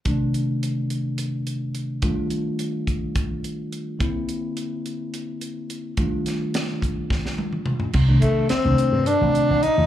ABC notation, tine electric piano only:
X:1
M:7/8
L:1/16
Q:1/4=106
K:Cdor
V:1 name="Tine electric piano"
[C,E,A,D]12- [C,E,A,D]2 | [E,G,A,DF]12- [E,G,A,DF]2 | [D,B,C=E]12- [D,B,CE]2 | [E,G,A,DF]12- [E,G,A,DF]2 |
z [C,E,A,D]3 z [C,E,A,D]3 z [C,E,A,C]3 z [C,E,A,F] |]